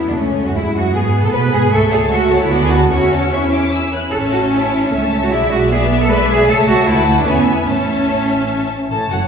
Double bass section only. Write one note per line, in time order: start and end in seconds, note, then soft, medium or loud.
0.07 0.17 D2 soft
0.16 0.45 C#2 medium
0.46 0.55 F#2 medium
0.55 0.63 E2 medium
0.75 0.94 F#2 medium
0.94 1.02 G#2 medium
1.23 1.27 A2 medium
1.33 1.52 B2 medium
1.53 1.60 G#2 medium
1.72 2.47 C#2 medium
2.51 2.91 D2 medium
2.92 3.93 E2 medium
4.13 4.89 A1 medium
4.93 5.32 C#2 medium
5.32 6.49 B1 medium
6.50 6.87 C#2 medium
6.88 7.27 D2 medium
7.27 7.67 E2 medium
7.68 8.68 A1 medium
8.91 9.09 A1 medium
9.11 9.28 F#1 soft